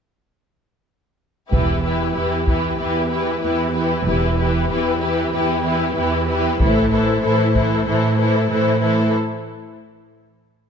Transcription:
1.50 double bass section E1, cello section E2, viola section E3 E4, violin section G4 B4, taiko
1.84 viola section E3 E4, violin section G4 B4
2.15 cello section E2, viola section E3 E4, violin section G4 B4
2.47 viola section E3 E4, violin section G4 B4, taiko
2.78 cello section E2, viola section E3 E4, violin section G4 B4
3.11 viola section E3 E4, violin section G4 B4
3.42 cello section E2, viola section E3 E4, violin section G4 B4
3.73 viola section E3 E4, violin section G4 B4
4.06 double bass section E1, cello section E2, viola section E3 E4, violin section G4 B4
4.39 viola section E3 E4, violin section G4 B4
4.70 cello section E2, viola section E3 E4, violin section G4 B4
5.00 viola section E3 E4, violin section G4 B4
5.33 cello section E2, viola section E3 E4, violin section G4 B4
5.64 viola section E3 E4, violin section G4 B4
5.96 cello section E2, viola section E3 E4, violin section G4 B4
6.28 viola section E3 E4, violin section G4 B4
6.59 double bass section A1, cello section A2, viola section E3 E4, violin section A4 C5, taiko
6.91 viola section E3 E4, violin section A4 C5
7.23 cello section A2, viola section E3 E4, violin section A4 C5
7.54 viola section E3 E4, violin section A4 C5, taiko
7.86 cello section A2, viola section E3 E4, violin section A4 C5
8.17 viola section E3 E4, violin section A4 C5
8.49 cello section A2, viola section E3 E4, violin section A4 C5
8.80 viola section E3 E4, violin section A4 C5

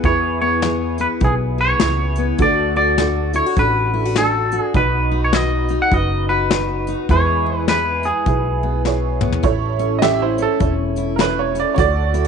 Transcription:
Already playing: steel-string acoustic guitar B3
0.04 upright bass E2, steel-string acoustic guitar E2, honky-tonk piano E4 G#4 B4, clean electric guitar C#5, kick, closed hi-hat
0.41 steel-string acoustic guitar B3, clean electric guitar C#5
0.62 steel-string acoustic guitar E3 G#4, honky-tonk piano E4 G#4 B4, snare, closed hi-hat
0.98 steel-string acoustic guitar B3, clean electric guitar B4, closed hi-hat
1.20 upright bass B1, steel-string acoustic guitar B2, honky-tonk piano E4 G#4 B4, kick, closed hi-hat
1.24 clean electric guitar G#4
1.58 steel-string acoustic guitar G#4, clean electric guitar C#5
1.80 upright bass C#2, steel-string acoustic guitar E3, honky-tonk piano E4 G#4 B4, snare, closed hi-hat
2.16 steel-string acoustic guitar B3, closed hi-hat
2.38 upright bass D2, steel-string acoustic guitar D3 A3 D4 F#4, honky-tonk piano D4 F#4 A4, clean electric guitar D5, kick, closed hi-hat
2.76 steel-string acoustic guitar F#4, clean electric guitar D5
2.98 steel-string acoustic guitar A3 F#4, honky-tonk piano D4 F#4 A4, snare, closed hi-hat
3.33 steel-string acoustic guitar E4, clean electric guitar C#5, closed hi-hat
3.46 steel-string acoustic guitar F#4
3.57 upright bass A1, steel-string acoustic guitar A2, honky-tonk piano D4 F#4 A4, clean electric guitar B4, kick, closed hi-hat
3.94 steel-string acoustic guitar E4
4.05 steel-string acoustic guitar F#4
4.16 steel-string acoustic guitar A3, honky-tonk piano D4 F#4 A4, clean electric guitar A4, snare, closed hi-hat
4.52 steel-string acoustic guitar F#4, closed hi-hat
4.61 clean electric guitar G#4
4.74 upright bass B1, steel-string acoustic guitar B2, honky-tonk piano D#4 F#4 B4, clean electric guitar B4, kick, closed hi-hat
5.12 steel-string acoustic guitar D#4
5.25 clean electric guitar C#5
5.33 steel-string acoustic guitar D#3 F#4, honky-tonk piano D#4 F#4 B4, clean electric guitar D#5, snare, closed hi-hat
5.69 steel-string acoustic guitar D#4, closed hi-hat
5.82 clean electric guitar F#5
5.91 upright bass F#1, steel-string acoustic guitar F#2, honky-tonk piano D#4 F#4 B4, clean electric guitar D#5, kick, closed hi-hat
6.29 steel-string acoustic guitar F#4, clean electric guitar B4
6.50 steel-string acoustic guitar D#3, honky-tonk piano D#4 F#4 B4, snare, closed hi-hat
6.87 steel-string acoustic guitar D#4, closed hi-hat
7.09 upright bass E2, steel-string acoustic guitar E2 E3 G#3 B3 G#4, honky-tonk piano E4 G#4 B4, clean electric guitar C#5, kick, closed hi-hat
7.46 steel-string acoustic guitar B3
7.57 clean electric guitar B4
7.68 steel-string acoustic guitar E3 G#4, honky-tonk piano E4 G#4 B4, clean electric guitar B4, snare, closed hi-hat
8.03 steel-string acoustic guitar B3, clean electric guitar G#4, closed hi-hat
8.26 upright bass B1, steel-string acoustic guitar B2, honky-tonk piano E4 G#4 B4, kick, closed hi-hat
8.63 steel-string acoustic guitar B3
8.85 steel-string acoustic guitar E3, honky-tonk piano E4 G#4 C#5, snare
9.21 steel-string acoustic guitar B3, mid tom
9.32 floor tom
9.43 upright bass A1, steel-string acoustic guitar A2, honky-tonk piano E4 A4 C#5, kick, closed hi-hat
9.79 steel-string acoustic guitar C#4, closed hi-hat
9.99 steel-string acoustic guitar E3 E4, honky-tonk piano E4 A4 C#5, upright piano G4 D#5, snare, closed hi-hat
10.03 upright piano E5
10.22 upright piano E4 C5
10.38 steel-string acoustic guitar C#4, closed hi-hat
10.42 upright piano A4
10.60 upright bass E1, steel-string acoustic guitar E2, honky-tonk piano E4 A4 C#5, kick, closed hi-hat
10.96 steel-string acoustic guitar E4, closed hi-hat
11.16 steel-string acoustic guitar E3, honky-tonk piano E4 A4 C#5, upright piano A#4, snare, closed hi-hat
11.21 upright piano B4
11.39 upright piano C#5
11.55 steel-string acoustic guitar C#4, closed hi-hat
11.60 upright piano D5
11.74 upright bass D2, steel-string acoustic guitar D3, honky-tonk piano F#4 A4 D5, upright piano C#5, kick, closed hi-hat
11.79 upright piano D5
12.14 steel-string acoustic guitar E4, closed hi-hat
12.25 steel-string acoustic guitar F#4

